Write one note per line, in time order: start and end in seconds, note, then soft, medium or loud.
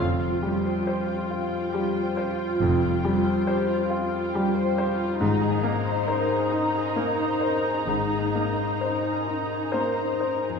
0.00 0.69 F1 soft
0.00 0.69 F2 soft
0.00 2.56 F2 soft
0.00 2.59 F2 soft
0.00 0.72 F3 medium
0.00 0.19 C4 soft
0.00 0.56 F4 medium
0.00 5.17 F4 soft
0.00 5.17 G5 soft
0.21 0.43 F4 soft
0.28 2.88 G3 soft
0.42 1.12 G3 soft
0.42 0.64 G4 soft
0.57 2.31 F4 soft
0.64 0.86 C5 soft
0.84 1.07 G4 soft
0.84 2.01 C5 soft
0.84 1.56 C5 soft
1.05 1.28 F4 soft
1.15 1.72 G4 soft
1.27 1.50 C4 soft
1.27 2.00 F4 soft
1.43 4.04 F5 soft
1.48 1.72 F4 soft
1.72 2.44 G3 soft
1.72 1.94 G4 soft
1.72 3.74 G4 soft
1.93 2.16 C5 soft
2.02 3.45 C5 soft
2.16 2.38 G4 soft
2.16 2.87 C5 soft
2.33 3.17 F4 soft
2.37 2.60 F4 soft
2.60 3.31 F1 medium
2.60 5.24 F2 soft
2.60 3.31 F2 medium
2.60 5.17 F2 soft
2.60 2.80 C4 soft
2.81 3.03 F4 soft
2.89 5.24 G3 soft
3.02 3.74 G3 soft
3.02 3.25 G4 soft
3.18 4.91 F4 soft
3.24 3.47 C5 soft
3.46 3.69 G4 soft
3.46 4.61 C5 soft
3.46 4.17 C5 soft
3.68 3.90 F4 soft
3.76 4.32 G4 soft
3.89 4.12 C4 soft
3.89 4.60 F4 soft
4.05 5.24 F5 soft
4.12 4.34 F4 soft
4.34 5.04 G3 soft
4.34 5.24 G4 soft
4.34 4.56 G4 soft
4.54 4.77 C5 soft
4.63 6.07 C5 soft
4.77 4.99 G4 soft
4.77 5.21 C5 soft
4.93 5.25 F4 soft
4.98 5.20 F4 medium
5.20 5.91 G#1 medium
5.20 7.84 G#2 soft
5.20 7.86 G#2 medium
5.20 5.91 G#2 medium
5.20 10.42 D#4 medium
5.20 5.40 D#4 medium
5.20 10.43 A#5 medium
5.40 5.63 G#4 soft
5.49 8.18 A#3 soft
5.63 6.34 A#3 soft
5.63 5.85 A#4 soft
5.78 7.56 D#4 soft
5.85 6.08 C5 soft
6.07 6.30 A#4 soft
6.07 6.79 C5 soft
6.07 7.26 C5 soft
6.28 6.51 G#4 soft
6.38 6.96 A#4 soft
6.50 6.74 D#4 soft
6.50 7.23 D#4 soft
6.67 9.41 D#5 soft
6.75 6.97 G#4 soft
6.96 7.69 A#3 soft
6.96 7.20 A#4 soft
6.96 9.10 A#4 soft
7.18 7.42 C5 soft
7.27 8.79 C5 soft
7.41 7.65 A#4 soft
7.41 8.15 C5 soft
7.57 8.49 D#4 soft
7.64 7.88 G#4 soft
7.87 8.63 G#1 soft
7.87 10.60 G#2 soft
7.87 8.63 G#2 soft
7.87 8.10 D#4 soft
8.11 8.35 G#4 soft
8.19 10.60 A#3 soft
8.35 9.09 A#3 soft
8.35 8.58 A#4 soft
8.50 10.35 D#4 soft
8.56 8.80 C5 soft
8.79 9.03 A#4 soft
8.79 10.03 C5 soft
8.79 9.55 C5 soft
9.02 9.26 G#4 soft
9.11 9.72 A#4 soft
9.26 9.50 D#4 soft
9.26 10.02 D#4 soft
9.42 10.60 D#5 soft
9.49 9.73 G#4 soft
9.72 10.49 A#3 soft
9.72 9.97 A#4 soft
9.72 10.60 A#4 soft
9.72 10.19 C5 soft
9.72 9.95 C5 soft
9.96 10.21 C5 soft
10.04 10.60 C5 soft
10.20 10.44 A#4 soft
10.20 10.60 C5 soft
10.36 10.60 D#4 soft
10.44 10.60 G#4 soft
10.49 10.60 F2 soft
10.53 10.60 C4 soft